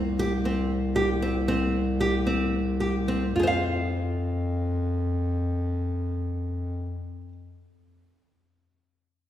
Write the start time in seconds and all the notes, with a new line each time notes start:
Already playing: C2
0.19 G4
0.45 C4
0.96 G4
1.22 C4
1.48 C4
2.01 G4
2.27 C4
2.80 G4
3.08 C4
3.34 F2 F4
3.40 G#4 C5
3.47 F5